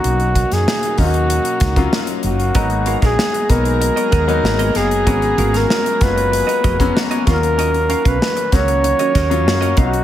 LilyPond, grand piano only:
\new Staff \with { instrumentName = "Grand piano" } { \time 4/4 \key ces \lydian \tempo 4 = 96 <fis ais des' dis'>4 r8 <fis ais des' dis'>8. r8 <fis ais des' f'>8. r8 | <ges bes ces' ees'>4 r8 <ges bes ces' ees'>8. r8 <ges bes ces' ees'>8. r8 | <ges bes ces' des'>4 r8 <ges aes ces' f'>8. r8 <ges bes ces' des'>8. <fis ais des' f'>8~ | <fis ais des' f'>4 r8 <fis ais des' fis'>8. r8 <fis ais des' f'>8. <fis ais des' dis'>8 | }